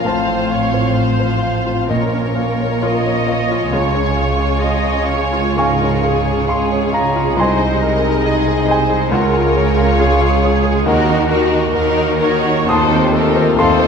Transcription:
Already playing: french horn section F3, violin section F4 F5
0.05 double bass section A1, grand piano A2 C5 F5 A5, cello section A2, french horn section C4, viola section C5, violin section C5
0.27 grand piano C4
0.50 viola section C#5, grand piano F5
0.74 grand piano C5
0.96 viola section C5, grand piano F5
1.20 grand piano C5
1.43 grand piano F5
1.67 grand piano F4
1.88 double bass section A#1, grand piano A#2 D#5, cello section A#2, timpani A#2, french horn section F3 C#4, violin section F4 A#4 C#5, viola section A#4
2.13 grand piano C#4
2.36 grand piano F5
2.60 grand piano C#5
2.81 grand piano F4 A#4 C#5 F5, viola section D#5
3.05 grand piano C#5
3.27 grand piano D#5 F5
3.52 grand piano F4
3.70 double bass section C#2, grand piano C#2 G#4 C#5 F5, cello section C#3, french horn section G#3, violin section G#4, viola section C#5
3.95 grand piano C#4
4.16 grand piano F5
4.38 grand piano C#5
4.60 viola section D#5, grand piano F5
4.83 grand piano C#5
5.08 viola section C#5, grand piano F5
5.33 grand piano F4
5.57 grand piano G#2 F5 G#5 C#6, viola section A#4
5.81 grand piano C#4
6.03 viola section G#4, grand piano F5
6.26 grand piano C#5
6.48 viola section G#4, grand piano F5 C6
6.71 grand piano C#5
6.93 grand piano F5 A#5
7.16 grand piano F4
7.37 grand piano C2 D#5 G#5 C6, double bass section C2, cello section C3, violin section D#4 D#5, french horn section D#4, viola section C5
7.59 grand piano D#4
7.81 viola section A#4, grand piano D#5
8.03 grand piano G#4
8.25 viola section G#4, grand piano D#5
8.48 grand piano G#4
8.68 viola section C5, grand piano D#5 G#5
8.90 grand piano G#4
9.11 double bass section C#2, grand piano C#2 F#5, cello section C#3, french horn section G#3 F4, violin section F4 G#4 C#5, viola section A#4
9.33 grand piano F4
9.55 grand piano C#5
9.77 grand piano F5
9.98 viola section G#4, grand piano G#4 C#5 F5
10.21 grand piano F5
10.43 grand piano C#5
10.65 grand piano G#4
10.85 double bass section D#2, grand piano D#2 A#4 D#5 F#5, cello section D#3, french horn section A#3 F#4, violin section D#4 F#4 A#4, viola section F#4
11.09 grand piano D#4
11.28 violin section D#4 F#4 A#4, grand piano A#4
11.52 grand piano D#5
11.72 double bass section D#2, cello section D#3, violin section D#4 F#4 A#4, grand piano A#4, viola section A#4
11.97 grand piano D#5
12.18 violin section A#4, grand piano A#4, viola section C#5
12.23 violin section D#4 F#4
12.44 grand piano F#4
12.66 grand piano D#2 A5 D#6, double bass section D#2, cello section D#3, french horn section A3 F4, violin section A4, viola section C5
12.70 violin section C4 F4, grand piano C6
12.90 grand piano C4
13.12 violin section C4 F4 A4, grand piano A4, viola section A#4
13.36 grand piano C5
13.56 double bass section D#2, cello section D#3, violin section C4 F4 A4, grand piano A4 C6, viola section C5
13.60 grand piano F5 A5
13.79 grand piano C5

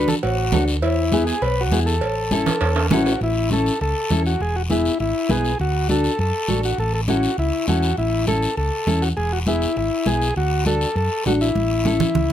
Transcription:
Already playing: fingered electric bass D2, nylon-string guitar D4 F#4 A4
0.08 transistor combo organ A4, low conga, short guiro
0.23 fingered electric bass A1, transistor combo organ F#4, cowbell, high conga, long guiro
0.52 fingered electric bass D2, nylon-string guitar D4 F#4 A4, high conga, low conga, low timbale, short guiro
0.68 short guiro
0.82 fingered electric bass E2, transistor combo organ E4, cowbell, high conga, long guiro
1.12 nylon-string guitar B3 E4 G#4, high conga, short guiro
1.27 transistor combo organ G#4, short guiro
1.42 fingered electric bass B1, transistor combo organ B4, cowbell, high conga, long guiro
1.61 transistor combo organ F#4
1.71 fingered electric bass E2, nylon-string guitar B3 E4 G#4, high conga, short guiro
1.86 transistor combo organ A4, short guiro
2.01 fingered electric bass A1, cowbell, high conga, long guiro
2.31 nylon-string guitar C#4 E4 A4, high conga, short guiro
2.46 low conga, high timbale, short guiro
2.61 fingered electric bass E2, cowbell, high conga, high timbale, long guiro
2.76 high timbale
2.91 fingered electric bass A1, nylon-string guitar C#4 E4 A4, transistor combo organ F#4, high conga, low conga, low timbale, short guiro
3.06 low timbale, short guiro
3.21 fingered electric bass A1, transistor combo organ E4, high conga, long guiro
3.51 nylon-string guitar C#4 E4 A4, transistor combo organ A4, high conga, short guiro
3.66 short guiro
3.81 fingered electric bass C#2, transistor combo organ A4, high conga, long guiro
4.11 fingered electric bass E2, nylon-string guitar C#4 E4 A4, high conga, short guiro
4.26 transistor combo organ F#4, short guiro
4.40 fingered electric bass E1, transistor combo organ G#4, high conga, long guiro
4.56 transistor combo organ F#4
4.69 nylon-string guitar B3 E4 G#4, transistor combo organ E4, high conga, short guiro
4.85 short guiro
5.00 fingered electric bass G#1, transistor combo organ E4, high conga, long guiro
5.29 fingered electric bass B1, nylon-string guitar B3 E4 B4, transistor combo organ G#4, high conga, short guiro
5.45 short guiro
5.59 fingered electric bass D2, transistor combo organ F#4, high conga, long guiro
5.89 nylon-string guitar D4 F#4 A4, transistor combo organ A4, high conga, short guiro
6.04 short guiro
6.19 fingered electric bass F#2, transistor combo organ A4, high conga, long guiro
6.48 fingered electric bass A1, nylon-string guitar D4 F#4 A4, high conga, short guiro
6.63 transistor combo organ F#4, short guiro
6.78 fingered electric bass A1, transistor combo organ A4, high conga, long guiro
6.95 transistor combo organ A4
7.08 nylon-string guitar C#4 E4 A4, transistor combo organ F#4, high conga, short guiro
7.23 short guiro
7.38 fingered electric bass C#2, transistor combo organ E4, high conga, long guiro
7.68 fingered electric bass E2, nylon-string guitar C#4 E4 A4, transistor combo organ F#4, high conga, short guiro
7.82 short guiro
7.97 fingered electric bass A1, transistor combo organ E4, high conga, long guiro
8.27 nylon-string guitar C#4 E4 A4, transistor combo organ A4, high conga, short guiro
8.42 short guiro
8.57 fingered electric bass C#2, transistor combo organ A4, high conga, long guiro
8.87 fingered electric bass E2, nylon-string guitar C#4 E4 A4, high conga, short guiro
9.02 transistor combo organ F#4, short guiro
9.17 fingered electric bass E1, transistor combo organ G#4, high conga, long guiro
9.33 transistor combo organ F#4
9.46 nylon-string guitar B3 E4 G#4, transistor combo organ E4, high conga, short guiro
9.62 short guiro
9.76 fingered electric bass G#1, transistor combo organ E4, high conga, long guiro
10.06 fingered electric bass B1, nylon-string guitar B3 E4 G#4, transistor combo organ G#4, high conga, short guiro
10.22 short guiro
10.36 fingered electric bass D2, transistor combo organ F#4, high conga, long guiro
10.66 nylon-string guitar D4 F#4 A4, transistor combo organ A4, high conga, short guiro
10.81 short guiro
10.96 fingered electric bass F#2, transistor combo organ A4, high conga, long guiro
11.26 fingered electric bass A1, nylon-string guitar D4 F#4 A4, transistor combo organ F#4, high conga, short guiro
11.41 transistor combo organ E4, short guiro
11.55 fingered electric bass A1, high conga, long guiro
11.85 nylon-string guitar C#4 E4 A4, high conga, short guiro
12.00 low conga, short guiro
12.15 fingered electric bass C#2, low conga, long guiro

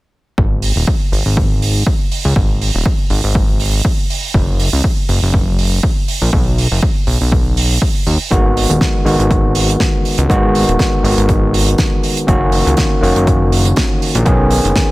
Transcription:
0.38 analog synth bass G#1, kick
0.62 open hi-hat
0.76 analog synth bass D#1
0.87 kick
1.12 analog synth bass G#1, open hi-hat
1.26 analog synth bass G#1
1.37 kick
1.62 open hi-hat
1.87 kick
2.11 open hi-hat
2.25 analog synth bass C#2
2.36 analog synth bass G#1, kick
2.62 open hi-hat
2.74 analog synth bass D#1
2.86 kick
3.10 analog synth bass G#1, open hi-hat
3.24 analog synth bass G#1
3.35 kick
3.60 open hi-hat
3.85 kick
4.10 open hi-hat
4.34 analog synth bass F#1, kick
4.59 open hi-hat
4.73 analog synth bass C#2
4.84 kick
5.09 analog synth bass F#1, open hi-hat
5.23 analog synth bass F#1
5.34 kick
5.58 open hi-hat
5.83 kick
6.08 open hi-hat
6.22 analog synth bass A#1
6.33 analog synth bass B1, kick
6.58 open hi-hat
6.71 analog synth bass F#1
6.83 kick
7.07 analog synth bass B1, open hi-hat
7.21 analog synth bass B1
7.32 kick
7.57 open hi-hat
7.82 kick
8.06 analog synth bass D#2, open hi-hat
8.31 analog synth bass G#1, tine electric piano D#3 G#3 B3 F#4, kick, closed hi-hat
8.57 open hi-hat
8.70 analog synth bass D#1, closed hi-hat
8.81 kick, snare, closed hi-hat
9.04 analog synth bass G#1, tine electric piano D#3 G#3 B3 F#4, open hi-hat
9.19 analog synth bass G#1, closed hi-hat
9.31 kick, closed hi-hat
9.55 open hi-hat
9.69 closed hi-hat
9.80 kick, snare, closed hi-hat
10.05 open hi-hat
10.18 analog synth bass C#2, closed hi-hat
10.29 analog synth bass G#1, tine electric piano D#3 G#3 B3 F#4, kick, closed hi-hat
10.55 open hi-hat
10.68 analog synth bass D#1, closed hi-hat
10.79 kick, snare, closed hi-hat
11.03 analog synth bass G#1, tine electric piano D#3 G#3 B3 F#4, open hi-hat
11.17 analog synth bass G#1, closed hi-hat
11.29 kick, closed hi-hat
11.54 open hi-hat
11.68 closed hi-hat
11.78 kick, snare, closed hi-hat
12.03 open hi-hat
12.17 closed hi-hat
12.27 analog synth bass F#1, tine electric piano D#3 A#3 C#4 F#4, kick, closed hi-hat
12.52 open hi-hat
12.66 analog synth bass C#2, closed hi-hat
12.77 kick, snare, closed hi-hat
13.01 analog synth bass F#1, tine electric piano D#3 A#3 C#4 F#4, open hi-hat
13.16 analog synth bass F#1, closed hi-hat
13.27 kick, closed hi-hat
13.52 open hi-hat
13.65 closed hi-hat
13.76 kick, snare, closed hi-hat
14.02 open hi-hat
14.15 analog synth bass A#1, closed hi-hat
14.25 analog synth bass B1, tine electric piano D#3 B3 C#4 G#4, kick, closed hi-hat
14.51 open hi-hat
14.65 analog synth bass F#1, closed hi-hat
14.76 kick, snare, closed hi-hat

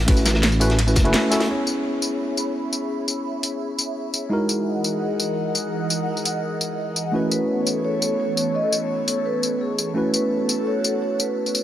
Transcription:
0.06 detuned saw bass A1, tine electric piano A3 C#4 E4 F#4 B4, kick, closed hi-hat, ride
0.17 closed hi-hat, tambourine
0.26 snare, closed hi-hat, tambourine
0.34 snare
0.43 snare, closed hi-hat, ride
0.52 tambourine
0.60 tine electric piano A3 C#4 E4 F#4 B4, closed hi-hat, open hi-hat, tambourine
0.70 snare, closed hi-hat
0.79 snare, closed hi-hat, ride
0.86 tine electric piano A3 C#4 E4 F#4 B4, tambourine
0.96 detuned saw bass F#1, kick, snare, closed hi-hat, tambourine
1.04 tine electric piano A3 C#4 E4 F#4 B4, closed hi-hat
1.13 snare, closed hi-hat, ride
1.30 tine electric piano A3 C#4 E4 F#4 A4, snare, closed hi-hat, tambourine
1.40 snare, closed hi-hat
1.47 tine electric piano B3 C#4 E4 G#4 C#5, analog synth pad G#4 C#5 E5 B5
1.67 tambourine
2.02 tambourine
2.37 tambourine
2.73 tambourine
3.08 tambourine
3.43 open hi-hat, tambourine
3.79 tambourine
4.14 tambourine
4.29 analog synth pad E3 A#4 D#5 F#5, tine electric piano G#3 D#4 E4 F#4 A#4
4.49 tambourine
4.84 tambourine
5.20 tambourine
5.55 tambourine
5.90 tambourine
6.17 tambourine
6.25 open hi-hat, tambourine
6.61 tambourine
6.96 tambourine
7.12 tine electric piano A3 C#4 E4 F#4 B4, analog synth pad B3 A4 C#5
7.31 vibraphone B4, tambourine
7.67 tambourine
7.85 vibraphone C#5
8.02 tambourine
8.20 vibraphone C#5
8.37 tambourine
8.55 vibraphone D#5
8.73 vibraphone C#5, tambourine
9.08 vibraphone C#5, open hi-hat, tambourine
9.26 vibraphone B4
9.43 tambourine
9.61 vibraphone G#4
9.78 tambourine
9.94 tine electric piano A3 C#4 E4 F#4 B4, analog synth pad F#4 A4
10.14 vibraphone B4, tambourine
10.49 tambourine
10.67 vibraphone C#5
10.84 tambourine
11.02 vibraphone C#5
11.20 vibraphone B4, tambourine
11.46 tambourine
11.55 tambourine

